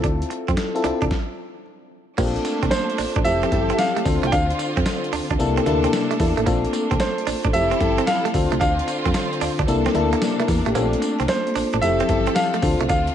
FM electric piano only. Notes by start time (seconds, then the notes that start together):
Already playing: C4 E4 F4 A4
0.75 C4 E4 F4 A4
0.84 C4 E4 F4 A4
2.18 C4 D4 F4 G4
2.25 A4
3.25 C4 E4 G4 A4
3.51 C4 E4 G4 A4
4.05 C4 D4 F4 A4
5.39 A#3 D4 E4 A4
5.66 A#3 D4 E4 A4
6.19 A#3 D4 E4 A4
6.46 C4 D4 F4 A4
7.53 C4 E4 G4 A4
7.80 C4 E4 G4 A4
8.34 C4 D4 F4 A4
9.67 A#3 D4 E4 A4
9.94 A#3 D4 E4 A4
10.22 A4 D5
10.40 E4 A#4
10.66 D4 G4
10.75 C4 C#4 F4 A4
10.81 D4
11.82 C4 E4 G4 A4
12.09 C4 E4 G4 A4
12.62 C4 D4 F4 A4